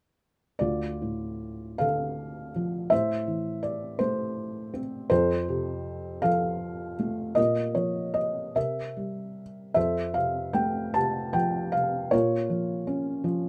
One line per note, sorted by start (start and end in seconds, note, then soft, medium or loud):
0.59 2.88 D2 soft
0.59 1.76 F4 soft
0.59 1.83 D5 medium
1.02 2.51 A2 soft
1.78 2.89 D3 soft
1.78 2.88 A4 soft
1.78 2.94 F5 medium
2.56 2.91 F3 soft
2.90 5.07 A2 soft
2.90 3.97 C5 medium
2.90 3.59 E5 medium
3.27 4.69 E3 soft
3.63 4.01 D5 medium
3.99 5.07 A3 soft
3.99 4.78 C5 medium
4.74 5.10 C4 soft
5.10 7.33 F2 medium
5.10 6.20 A4 medium
5.10 6.26 C5 medium
5.49 6.96 C3 soft
6.22 7.34 F3 soft
6.22 7.33 A4 medium
6.22 7.40 F5 medium
6.99 7.36 A3 soft
7.35 8.52 A#2 soft
7.35 8.51 A#4 medium
7.35 7.72 D#5 medium
7.75 8.53 F3 soft
7.75 8.16 C#5 medium
8.14 8.56 D#5 medium
8.55 9.72 C3 soft
8.55 9.72 A#4 soft
8.55 9.43 E5 medium
8.97 9.74 G3 soft
9.74 12.09 F2 soft
9.74 10.91 A4 medium
9.74 10.91 C5 soft
9.74 10.16 E5 medium
10.14 10.94 C3 soft
10.14 10.52 F5 medium
10.53 12.08 A3 soft
10.53 10.95 G5 medium
10.94 11.72 C3 soft
10.94 11.35 A5 medium
11.33 12.10 F3 soft
11.33 11.74 G5 medium
11.72 12.11 C3 soft
11.72 12.13 F5 medium
12.11 13.49 A#2 medium
12.11 13.49 F4 soft
12.11 13.49 A#4 medium
12.11 13.49 C#5 medium
12.50 13.23 F3 soft
12.87 13.49 C#4 soft
13.24 13.49 F3 soft